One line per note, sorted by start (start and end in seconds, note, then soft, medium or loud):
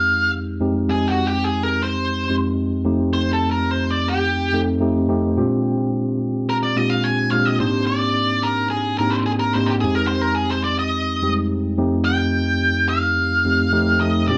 0.00 0.60 F2 medium
0.00 0.60 G#3 medium
0.00 0.61 C4 medium
0.00 0.61 D#4 medium
0.00 0.62 G4 loud
0.00 0.30 F5 medium
0.60 0.83 F2 medium
0.60 0.83 G#3 medium
0.60 0.83 C4 medium
0.60 0.83 D#4 medium
0.60 0.83 G4 medium
0.88 1.76 F2 medium
0.88 1.76 G#3 medium
0.88 1.76 C4 medium
0.88 1.77 D#4 medium
0.88 1.77 G4 medium
0.88 1.09 G#4 medium
1.08 1.27 F#4 medium
1.27 1.44 G4 medium
1.44 1.63 G#4 medium
1.63 1.83 A#4 medium
1.82 2.35 C5 medium
2.29 2.73 F2 medium
2.29 2.73 G#3 medium
2.29 2.73 C4 medium
2.29 2.73 D#4 medium
2.29 2.74 G4 medium
2.84 3.74 F2 medium
2.84 3.75 A3 medium
2.84 3.75 C4 medium
2.84 3.75 D#4 medium
2.84 3.75 G4 medium
3.14 3.33 C5 medium
3.33 3.50 A4 medium
3.51 3.71 A#4 medium
3.71 3.89 C5 medium
3.91 4.08 D5 loud
4.08 4.59 G4 medium
4.52 4.79 F2 medium
4.52 4.79 A3 medium
4.52 4.80 C4 medium
4.52 4.80 D#4 medium
4.52 4.81 A4 medium
4.80 5.03 F2 medium
4.80 5.03 A3 medium
4.80 5.03 C4 medium
4.80 5.04 D#4 medium
4.80 5.04 G4 loud
5.09 5.31 F2 medium
5.09 5.31 A3 medium
5.09 5.31 C4 medium
5.09 5.31 D#4 medium
5.09 5.31 G4 loud
5.37 6.24 A#2 medium
5.37 6.24 G#3 medium
5.37 6.24 C4 medium
5.37 6.24 D4 medium
5.37 6.24 F4 medium
5.37 6.24 G4 loud
6.49 6.54 A#4 medium
6.63 6.77 D5 medium
6.76 7.20 A#2 medium
6.76 7.20 G#3 medium
6.76 7.20 C4 medium
6.76 7.20 D4 medium
6.76 7.20 F4 medium
6.76 7.20 G4 medium
6.76 6.90 D#5 loud
6.90 7.04 F5 loud
7.04 7.31 G#5 loud
7.31 7.54 A#2 medium
7.31 7.54 G#3 medium
7.31 7.54 C4 medium
7.31 7.54 D4 medium
7.31 7.54 F4 medium
7.31 7.55 G4 medium
7.31 7.46 F5 loud
7.45 7.60 D#5 loud
7.59 8.47 G#2 medium
7.59 8.47 A#3 medium
7.59 8.47 C4 medium
7.59 8.47 D4 medium
7.59 8.47 D#4 medium
7.59 8.47 G4 medium
7.59 7.86 C5 medium
7.87 8.45 D5 medium
8.43 8.70 A#4 medium
8.70 8.98 G#4 medium
8.99 9.43 G#2 medium
8.99 9.43 A#3 medium
8.99 9.43 C4 medium
8.99 9.43 D4 medium
8.99 9.43 D#4 medium
8.99 9.43 G4 medium
8.99 9.13 A#4 medium
9.10 9.15 C5 medium
9.26 9.31 G#4 medium
9.40 9.55 A#4 medium
9.53 9.77 G#2 medium
9.53 9.77 A#3 medium
9.53 9.77 C4 medium
9.53 9.77 D4 medium
9.53 9.77 D#4 medium
9.53 9.78 G4 medium
9.53 9.69 C5 medium
9.66 9.71 G4 medium
9.80 10.70 F2 medium
9.80 10.70 G#3 medium
9.80 10.70 C4 medium
9.80 10.70 D#4 medium
9.80 10.70 G4 medium
9.80 9.95 G#4 medium
9.95 10.07 A#4 medium
10.07 10.21 C5 medium
10.21 10.35 A#4 medium
10.35 10.51 G#4 medium
10.50 10.64 C5 medium
10.64 10.79 D5 medium
10.79 11.32 D#5 medium
11.22 11.66 F2 medium
11.22 11.29 G3 soft
11.22 11.66 C4 medium
11.22 11.66 D#4 medium
11.22 11.66 G4 medium
11.29 11.69 G#3 medium
11.77 12.67 F2 medium
11.77 12.67 A3 medium
11.77 12.67 C4 medium
11.77 12.67 D#4 medium
11.77 12.67 G4 loud
12.05 12.89 G5 loud
12.89 14.04 F5 loud
13.45 13.71 F2 medium
13.45 13.71 A3 medium
13.45 13.71 C4 medium
13.45 13.72 D#4 medium
13.45 13.72 G4 medium
13.72 13.95 F2 loud
13.72 13.95 A3 medium
13.72 13.95 C4 medium
13.72 13.95 D#4 medium
13.72 13.95 G4 loud
14.01 14.22 F2 medium
14.01 14.23 A3 medium
14.01 14.23 C4 medium
14.01 14.23 D#4 medium
14.01 14.23 A4 medium
14.01 14.27 D#5 medium
14.28 14.38 A#2 medium
14.28 14.38 G#3 medium
14.28 14.38 C4 medium
14.28 14.38 D4 medium
14.28 14.38 F4 medium
14.28 14.38 G4 medium
14.28 14.38 D5 loud